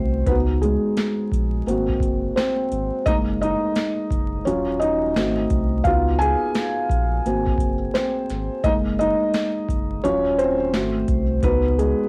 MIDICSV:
0, 0, Header, 1, 4, 480
1, 0, Start_track
1, 0, Key_signature, 6, "major"
1, 0, Tempo, 697674
1, 183, Time_signature, 4, 2, 24, 8
1, 8316, End_track
2, 0, Start_track
2, 0, Title_t, "Felt piano"
2, 0, Program_c, 0, 0
2, 0, Control_c, 0, 64, 127
2, 0, Note_on_c, 0, 57, 55
2, 0, Note_on_c, 0, 60, 53
2, 0, Note_on_c, 0, 66, 60
2, 0, Note_on_c, 0, 72, 95
2, 162, Note_off_c, 0, 57, 0
2, 163, Note_off_c, 0, 60, 0
2, 165, Note_off_c, 0, 66, 0
2, 185, Note_on_c, 0, 71, 93
2, 189, Note_on_c, 0, 59, 73
2, 192, Control_c, 0, 64, 0
2, 194, Note_on_c, 0, 63, 53
2, 198, Note_on_c, 0, 66, 59
2, 204, Note_off_c, 0, 72, 0
2, 239, Note_off_c, 0, 71, 0
2, 251, Note_off_c, 0, 59, 0
2, 302, Control_c, 0, 64, 127
2, 423, Note_on_c, 0, 68, 72
2, 436, Note_on_c, 0, 56, 61
2, 1121, Note_off_c, 0, 63, 0
2, 1123, Note_off_c, 0, 66, 0
2, 1148, Note_on_c, 0, 58, 56
2, 1152, Control_c, 0, 64, 0
2, 1152, Note_on_c, 0, 60, 54
2, 1157, Note_on_c, 0, 66, 64
2, 1270, Control_c, 0, 64, 127
2, 1355, Note_off_c, 0, 68, 0
2, 1362, Note_off_c, 0, 56, 0
2, 1623, Note_on_c, 0, 72, 84
2, 1630, Note_off_c, 0, 60, 0
2, 1640, Note_on_c, 0, 60, 75
2, 2078, Note_off_c, 0, 58, 0
2, 2083, Note_off_c, 0, 66, 0
2, 2084, Note_off_c, 0, 60, 0
2, 2103, Note_on_c, 0, 75, 119
2, 2109, Note_on_c, 0, 56, 57
2, 2111, Control_c, 0, 64, 0
2, 2111, Note_on_c, 0, 58, 54
2, 2117, Note_off_c, 0, 72, 0
2, 2117, Note_on_c, 0, 63, 84
2, 2157, Note_off_c, 0, 75, 0
2, 2170, Note_off_c, 0, 63, 0
2, 2214, Control_c, 0, 64, 127
2, 2349, Note_on_c, 0, 75, 92
2, 2361, Note_on_c, 0, 63, 78
2, 2798, Note_off_c, 0, 75, 0
2, 2804, Note_off_c, 0, 63, 0
2, 3039, Note_off_c, 0, 56, 0
2, 3040, Note_off_c, 0, 58, 0
2, 3062, Note_on_c, 0, 73, 83
2, 3068, Note_on_c, 0, 54, 61
2, 3073, Control_c, 0, 64, 0
2, 3073, Note_on_c, 0, 61, 65
2, 3076, Note_on_c, 0, 65, 62
2, 3184, Control_c, 0, 64, 127
2, 3294, Note_off_c, 0, 61, 0
2, 3298, Note_on_c, 0, 75, 87
2, 3310, Note_off_c, 0, 73, 0
2, 3318, Note_on_c, 0, 63, 66
2, 3522, Note_off_c, 0, 54, 0
2, 3526, Note_off_c, 0, 65, 0
2, 3548, Note_on_c, 0, 57, 57
2, 3552, Note_on_c, 0, 60, 49
2, 3553, Control_c, 0, 64, 0
2, 3557, Note_on_c, 0, 66, 58
2, 3667, Control_c, 0, 64, 127
2, 4002, Note_off_c, 0, 57, 0
2, 4003, Note_off_c, 0, 63, 0
2, 4004, Note_off_c, 0, 60, 0
2, 4006, Note_off_c, 0, 66, 0
2, 4017, Note_on_c, 0, 77, 91
2, 4031, Note_on_c, 0, 59, 54
2, 4033, Control_c, 0, 64, 0
2, 4035, Note_on_c, 0, 63, 55
2, 4039, Note_on_c, 0, 65, 80
2, 4039, Note_on_c, 0, 66, 66
2, 4042, Note_off_c, 0, 75, 0
2, 4167, Control_c, 0, 64, 127
2, 4243, Note_off_c, 0, 77, 0
2, 4255, Note_off_c, 0, 65, 0
2, 4256, Note_on_c, 0, 80, 104
2, 4279, Note_on_c, 0, 68, 72
2, 4720, Note_off_c, 0, 59, 0
2, 4722, Note_off_c, 0, 63, 0
2, 4724, Note_off_c, 0, 66, 0
2, 4991, Control_c, 0, 64, 0
2, 4991, Note_on_c, 0, 58, 56
2, 4995, Note_on_c, 0, 60, 55
2, 4999, Note_on_c, 0, 66, 56
2, 5113, Control_c, 0, 64, 127
2, 5192, Note_off_c, 0, 80, 0
2, 5203, Note_off_c, 0, 68, 0
2, 5329, Note_off_c, 0, 58, 0
2, 5331, Note_off_c, 0, 60, 0
2, 5333, Note_off_c, 0, 66, 0
2, 5462, Note_on_c, 0, 72, 85
2, 5479, Note_on_c, 0, 60, 65
2, 5924, Note_off_c, 0, 60, 0
2, 5942, Note_on_c, 0, 75, 109
2, 5946, Note_on_c, 0, 56, 55
2, 5951, Control_c, 0, 64, 0
2, 5951, Note_on_c, 0, 58, 52
2, 5956, Note_on_c, 0, 63, 81
2, 5957, Note_off_c, 0, 72, 0
2, 5996, Note_off_c, 0, 75, 0
2, 6010, Note_off_c, 0, 63, 0
2, 6070, Control_c, 0, 64, 127
2, 6186, Note_on_c, 0, 75, 93
2, 6198, Note_on_c, 0, 63, 69
2, 6637, Note_off_c, 0, 75, 0
2, 6643, Note_off_c, 0, 63, 0
2, 6877, Note_off_c, 0, 56, 0
2, 6879, Note_off_c, 0, 58, 0
2, 6905, Note_on_c, 0, 73, 100
2, 6906, Note_on_c, 0, 54, 54
2, 6911, Note_on_c, 0, 61, 75
2, 6912, Control_c, 0, 64, 0
2, 6917, Note_on_c, 0, 65, 63
2, 7032, Control_c, 0, 64, 127
2, 7134, Note_off_c, 0, 61, 0
2, 7145, Note_on_c, 0, 72, 95
2, 7151, Note_off_c, 0, 73, 0
2, 7156, Note_on_c, 0, 60, 66
2, 7247, Note_off_c, 0, 54, 0
2, 7252, Note_off_c, 0, 65, 0
2, 7383, Note_off_c, 0, 60, 0
2, 7387, Note_on_c, 0, 57, 57
2, 7390, Control_c, 0, 64, 0
2, 7393, Note_on_c, 0, 60, 53
2, 7396, Note_on_c, 0, 66, 67
2, 7492, Control_c, 0, 64, 127
2, 7727, Note_off_c, 0, 57, 0
2, 7730, Note_off_c, 0, 60, 0
2, 7732, Note_off_c, 0, 66, 0
2, 7866, Note_on_c, 0, 59, 73
2, 7868, Note_on_c, 0, 71, 102
2, 7870, Note_on_c, 0, 63, 53
2, 7872, Control_c, 0, 64, 0
2, 7873, Note_on_c, 0, 66, 64
2, 7885, Note_off_c, 0, 72, 0
2, 7977, Control_c, 0, 64, 127
2, 8093, Note_off_c, 0, 59, 0
2, 8109, Note_on_c, 0, 68, 80
2, 8112, Note_off_c, 0, 71, 0
2, 8115, Note_on_c, 0, 56, 58
2, 8316, Note_off_c, 0, 56, 0
2, 8316, Note_off_c, 0, 63, 0
2, 8316, Note_off_c, 0, 66, 0
2, 8316, Note_off_c, 0, 68, 0
2, 8316, End_track
3, 0, Start_track
3, 0, Title_t, "Sub bass"
3, 0, Program_c, 1, 38
3, 0, Note_on_c, 1, 36, 81
3, 158, Note_off_c, 1, 36, 0
3, 187, Note_on_c, 1, 37, 124
3, 527, Note_off_c, 1, 37, 0
3, 911, Note_on_c, 1, 34, 104
3, 1118, Note_off_c, 1, 34, 0
3, 1148, Note_on_c, 1, 32, 101
3, 1356, Note_off_c, 1, 32, 0
3, 1382, Note_on_c, 1, 30, 101
3, 1593, Note_off_c, 1, 30, 0
3, 1868, Note_on_c, 1, 32, 95
3, 1997, Note_off_c, 1, 32, 0
3, 2110, Note_on_c, 1, 30, 113
3, 2449, Note_off_c, 1, 30, 0
3, 2830, Note_on_c, 1, 30, 94
3, 3037, Note_off_c, 1, 30, 0
3, 3069, Note_on_c, 1, 27, 96
3, 3549, Note_on_c, 1, 32, 102
3, 3559, Note_off_c, 1, 27, 0
3, 3757, Note_off_c, 1, 32, 0
3, 3792, Note_on_c, 1, 36, 85
3, 3999, Note_off_c, 1, 36, 0
3, 4027, Note_on_c, 1, 37, 114
3, 4367, Note_off_c, 1, 37, 0
3, 4748, Note_on_c, 1, 34, 107
3, 4956, Note_off_c, 1, 34, 0
3, 4994, Note_on_c, 1, 32, 95
3, 5199, Note_off_c, 1, 32, 0
3, 5219, Note_on_c, 1, 30, 100
3, 5431, Note_off_c, 1, 30, 0
3, 5713, Note_on_c, 1, 32, 88
3, 5840, Note_off_c, 1, 32, 0
3, 5947, Note_on_c, 1, 30, 125
3, 6287, Note_off_c, 1, 30, 0
3, 6669, Note_on_c, 1, 30, 95
3, 6877, Note_off_c, 1, 30, 0
3, 6913, Note_on_c, 1, 27, 108
3, 7391, Note_on_c, 1, 32, 90
3, 7401, Note_off_c, 1, 27, 0
3, 7598, Note_off_c, 1, 32, 0
3, 7631, Note_on_c, 1, 36, 81
3, 7838, Note_off_c, 1, 36, 0
3, 7867, Note_on_c, 1, 37, 114
3, 8207, Note_off_c, 1, 37, 0
3, 8316, End_track
4, 0, Start_track
4, 0, Title_t, "Drums"
4, 182, Note_on_c, 9, 36, 117
4, 183, Note_on_c, 9, 42, 79
4, 251, Note_off_c, 9, 36, 0
4, 252, Note_off_c, 9, 42, 0
4, 432, Note_on_c, 9, 42, 63
4, 501, Note_off_c, 9, 42, 0
4, 665, Note_on_c, 9, 42, 87
4, 669, Note_on_c, 9, 38, 101
4, 734, Note_off_c, 9, 42, 0
4, 738, Note_off_c, 9, 38, 0
4, 906, Note_on_c, 9, 36, 81
4, 918, Note_on_c, 9, 42, 61
4, 975, Note_off_c, 9, 36, 0
4, 987, Note_off_c, 9, 42, 0
4, 1159, Note_on_c, 9, 42, 84
4, 1227, Note_off_c, 9, 42, 0
4, 1300, Note_on_c, 9, 36, 75
4, 1369, Note_off_c, 9, 36, 0
4, 1377, Note_on_c, 9, 36, 86
4, 1395, Note_on_c, 9, 42, 71
4, 1446, Note_off_c, 9, 36, 0
4, 1464, Note_off_c, 9, 42, 0
4, 1633, Note_on_c, 9, 38, 119
4, 1637, Note_on_c, 9, 42, 84
4, 1702, Note_off_c, 9, 38, 0
4, 1706, Note_off_c, 9, 42, 0
4, 1869, Note_on_c, 9, 42, 70
4, 1938, Note_off_c, 9, 42, 0
4, 2106, Note_on_c, 9, 36, 117
4, 2109, Note_on_c, 9, 42, 81
4, 2175, Note_off_c, 9, 36, 0
4, 2178, Note_off_c, 9, 42, 0
4, 2358, Note_on_c, 9, 42, 64
4, 2427, Note_off_c, 9, 42, 0
4, 2584, Note_on_c, 9, 42, 76
4, 2588, Note_on_c, 9, 38, 108
4, 2652, Note_off_c, 9, 42, 0
4, 2657, Note_off_c, 9, 38, 0
4, 2825, Note_on_c, 9, 36, 93
4, 2833, Note_on_c, 9, 42, 69
4, 2894, Note_off_c, 9, 36, 0
4, 2902, Note_off_c, 9, 42, 0
4, 3077, Note_on_c, 9, 42, 82
4, 3146, Note_off_c, 9, 42, 0
4, 3314, Note_on_c, 9, 42, 67
4, 3382, Note_off_c, 9, 42, 0
4, 3553, Note_on_c, 9, 38, 109
4, 3557, Note_on_c, 9, 42, 86
4, 3621, Note_off_c, 9, 38, 0
4, 3625, Note_off_c, 9, 42, 0
4, 3785, Note_on_c, 9, 42, 68
4, 3787, Note_on_c, 9, 36, 104
4, 3854, Note_off_c, 9, 42, 0
4, 3856, Note_off_c, 9, 36, 0
4, 4023, Note_on_c, 9, 36, 117
4, 4024, Note_on_c, 9, 42, 67
4, 4092, Note_off_c, 9, 36, 0
4, 4093, Note_off_c, 9, 42, 0
4, 4276, Note_on_c, 9, 42, 71
4, 4345, Note_off_c, 9, 42, 0
4, 4504, Note_on_c, 9, 42, 77
4, 4508, Note_on_c, 9, 38, 101
4, 4573, Note_off_c, 9, 42, 0
4, 4577, Note_off_c, 9, 38, 0
4, 4744, Note_on_c, 9, 36, 85
4, 4754, Note_on_c, 9, 42, 69
4, 4813, Note_off_c, 9, 36, 0
4, 4823, Note_off_c, 9, 42, 0
4, 4994, Note_on_c, 9, 42, 73
4, 5063, Note_off_c, 9, 42, 0
4, 5137, Note_on_c, 9, 36, 85
4, 5206, Note_off_c, 9, 36, 0
4, 5214, Note_on_c, 9, 36, 93
4, 5231, Note_on_c, 9, 42, 74
4, 5283, Note_off_c, 9, 36, 0
4, 5300, Note_off_c, 9, 42, 0
4, 5469, Note_on_c, 9, 38, 115
4, 5473, Note_on_c, 9, 42, 80
4, 5538, Note_off_c, 9, 38, 0
4, 5542, Note_off_c, 9, 42, 0
4, 5707, Note_on_c, 9, 42, 71
4, 5712, Note_on_c, 9, 38, 34
4, 5776, Note_off_c, 9, 42, 0
4, 5781, Note_off_c, 9, 38, 0
4, 5943, Note_on_c, 9, 36, 119
4, 5945, Note_on_c, 9, 42, 72
4, 6012, Note_off_c, 9, 36, 0
4, 6014, Note_off_c, 9, 42, 0
4, 6197, Note_on_c, 9, 42, 66
4, 6266, Note_off_c, 9, 42, 0
4, 6423, Note_on_c, 9, 42, 76
4, 6428, Note_on_c, 9, 38, 94
4, 6492, Note_off_c, 9, 42, 0
4, 6496, Note_off_c, 9, 38, 0
4, 6663, Note_on_c, 9, 36, 88
4, 6673, Note_on_c, 9, 42, 65
4, 6732, Note_off_c, 9, 36, 0
4, 6742, Note_off_c, 9, 42, 0
4, 6913, Note_on_c, 9, 42, 83
4, 6982, Note_off_c, 9, 42, 0
4, 7149, Note_on_c, 9, 42, 68
4, 7218, Note_off_c, 9, 42, 0
4, 7387, Note_on_c, 9, 38, 114
4, 7391, Note_on_c, 9, 42, 80
4, 7456, Note_off_c, 9, 38, 0
4, 7460, Note_off_c, 9, 42, 0
4, 7624, Note_on_c, 9, 42, 66
4, 7625, Note_on_c, 9, 36, 100
4, 7693, Note_off_c, 9, 42, 0
4, 7694, Note_off_c, 9, 36, 0
4, 7862, Note_on_c, 9, 36, 105
4, 7863, Note_on_c, 9, 42, 74
4, 7931, Note_off_c, 9, 36, 0
4, 7931, Note_off_c, 9, 42, 0
4, 8112, Note_on_c, 9, 42, 67
4, 8181, Note_off_c, 9, 42, 0
4, 8316, End_track
0, 0, End_of_file